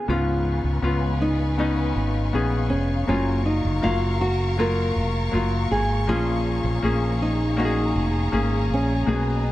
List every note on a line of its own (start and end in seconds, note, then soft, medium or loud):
0.00 0.08 B3 medium
0.00 0.09 C#4 medium
0.07 0.61 C#2 medium
0.07 1.17 G#2 medium
0.07 0.79 B3 medium
0.07 0.80 C#4 medium
0.07 0.80 F4 medium
0.07 1.25 F4 medium
0.07 3.05 B4 medium
0.07 9.04 F5 medium
0.07 3.05 G#5 medium
0.07 9.04 C#6 medium
0.64 0.82 C#2 medium
0.82 1.91 C#2 medium
0.82 1.54 B3 medium
0.82 1.54 C#4 medium
0.82 1.55 F4 medium
1.22 1.56 D#4 medium
1.58 2.29 B3 medium
1.58 2.30 C#4 medium
1.58 2.69 D#4 medium
1.58 2.30 D#4 medium
1.95 2.31 G#1 medium
2.33 2.68 A#1 medium
2.33 3.04 B3 medium
2.33 3.05 C#4 medium
2.33 3.05 G#4 medium
2.70 3.06 F1 medium
2.70 3.07 C#4 medium
3.07 3.60 F#1 medium
3.07 4.17 C#3 medium
3.07 3.79 F#3 medium
3.07 3.80 A#3 medium
3.07 3.43 C#4 medium
3.07 3.80 F4 medium
3.07 6.06 A#4 medium
3.07 6.06 A#5 medium
3.46 3.84 D#4 medium
3.64 3.82 F#1 medium
3.82 4.92 F#1 medium
3.82 4.54 F#3 medium
3.82 4.54 A#3 medium
3.82 4.21 F4 medium
3.82 4.55 F5 medium
4.21 4.59 F#4 medium
4.58 5.29 F#3 medium
4.58 5.30 A#3 medium
4.58 5.30 F4 medium
4.58 5.71 A#4 medium
4.96 5.31 F1 medium
5.31 5.68 F#1 medium
5.31 6.04 F#3 medium
5.31 6.04 A#3 medium
5.31 6.05 F4 medium
5.71 6.06 G#1 medium
5.71 6.10 G#4 medium
6.07 6.61 A#1 medium
6.07 7.17 A#2 medium
6.07 7.17 F3 medium
6.07 6.79 A#3 medium
6.07 6.80 C#4 medium
6.07 7.22 F4 medium
6.07 9.52 G#4 medium
6.07 6.80 G#4 medium
6.07 9.52 A#5 medium
6.64 6.82 A#1 medium
6.83 7.92 A#1 medium
6.83 7.54 A#3 medium
6.83 7.55 C#4 medium
6.83 7.55 G#4 medium
7.22 7.58 D#4 medium
7.57 8.29 A#3 medium
7.57 8.29 C#4 medium
7.57 8.67 D#4 medium
7.57 7.65 F#4 medium
7.65 8.32 G#4 medium
7.95 8.30 F1 medium
8.32 8.68 G#1 medium
8.32 9.04 A#3 medium
8.32 9.04 C#4 medium
8.32 9.05 G#4 medium
8.70 9.05 A#1 medium
8.70 9.43 C#4 medium
9.06 9.52 B1 medium
9.06 9.52 B2 medium
9.06 9.52 A#3 medium
9.06 9.52 B3 medium
9.06 9.52 G#4 medium
9.06 9.52 D#5 medium
9.06 9.52 G#5 medium